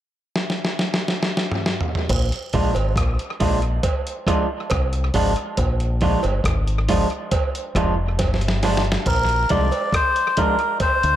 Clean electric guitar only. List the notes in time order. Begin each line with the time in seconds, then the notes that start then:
2.54 F3 G#3 D4 F4
3.40 F3 G#3 D4 F4
4.27 F3 G#3 D4 F4
5.14 F3 G#3 D4 F4
6.02 F3 G#3 D4 F4
6.89 F3 G#3 D4 F4
7.76 F3 G#3 D4 F4
8.63 F3 G#3 D4 F4
9.50 F3 G#3 D4 F4
10.37 F3 G#3 D4 F4